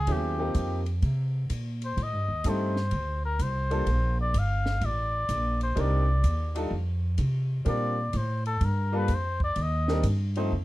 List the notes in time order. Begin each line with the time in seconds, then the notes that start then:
Already playing: G#4
0.07 D#2 F#3 B3 C#4 E4 G#4, kick, ride
0.12 G4
0.38 F3 A#3 C4 D#4 G4
0.55 F2, kick, hi-hat pedal, ride
0.86 ride
1.02 C3, kick, ride
1.50 A#2, kick, hi-hat pedal, ride
1.82 C5, ride
1.97 A2, kick, ride
2.03 D#5
2.13 G2
2.28 D#2
2.44 G2 G3 A3 C4 D#4 A4, kick, hi-hat pedal, ride
2.49 C5
2.76 snare
2.91 D2, kick, ride
3.25 A#4
3.39 C2 C5, kick, hi-hat pedal, ride
3.70 G3 A#3 D4 F4 A4, ride
3.86 A#1, kick, ride
4.21 D5
4.34 G1, kick, hi-hat pedal, ride
4.38 F5
4.66 snare
4.81 A1 D5, kick, ride
5.29 A#1, kick, hi-hat pedal, ride
5.61 C5, ride
5.75 C2 G3 C4 D4 D#4 A#4, kick, ride
5.81 D5
6.23 D#2, kick, hi-hat pedal, ride
6.55 G3 D4 D#4 F4 A4, ride
6.71 F2, kick
7.18 C3, kick, hi-hat pedal, ride
7.65 A#2 G3 C4 D4 F4 A#4 D5, kick, ride
8.13 A2 C5, kick, hi-hat pedal, ride
8.46 A4, ride
8.61 G2 A#4, kick, ride
8.92 G3 A#3 D4 F4 A4
8.97 B4
9.08 F2, kick, hi-hat pedal, ride
9.15 C5
9.40 D5, kick
9.56 D#2, kick, ride
9.62 D#5
9.88 G3 C4 D4 D#4 A#4, snare
10.03 G2, kick, hi-hat pedal, ride
10.35 F3 A3 C4 D#4 C5, ride
10.52 F2